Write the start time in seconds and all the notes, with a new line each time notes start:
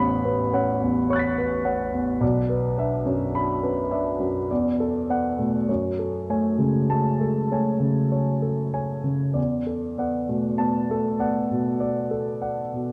Already playing: A1 E2 B3 C#4 B4 C#5 F#5 B5
0.25 B3 B4
0.53 C#4 C#5 F#5
0.81 E2
1.10 C#5 C#6 F#6
1.16 A6 B6
1.38 B4
1.65 C#5 F#5
1.92 E2
2.21 B1 D5
2.49 B4
2.78 D4 D5 E5
3.05 F#2 C#4
3.35 D4 B5
3.62 C#4 B4
3.91 D4 D5 E5
4.20 F#2
4.51 E2 D5
4.80 A4
5.09 B3 D5 F#5
5.39 B2 A3
5.69 F#2 C#5
5.99 A4
6.30 A3 C#5 G#5
6.59 C#3 G#3
6.90 A3 A5
7.21 G#3 A4
7.52 A3 C#5 G#5
7.80 C#3
8.12 C#5
8.42 A4
8.74 C#5 G#5
9.04 C#3
9.34 E2 D5
9.67 A4
9.98 B3 D5 F#5
10.29 B2 A3
10.58 B3 A5
10.90 A3 A4
11.19 B3 D5 F#5
11.51 B2
11.80 D5
12.11 A4
12.42 D5 F#5
12.73 B2